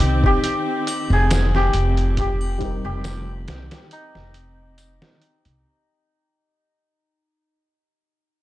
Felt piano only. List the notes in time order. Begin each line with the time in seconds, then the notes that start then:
Already playing: D#3 C4 D#4 G5
2.58 G3 C4
2.62 D#4 A#4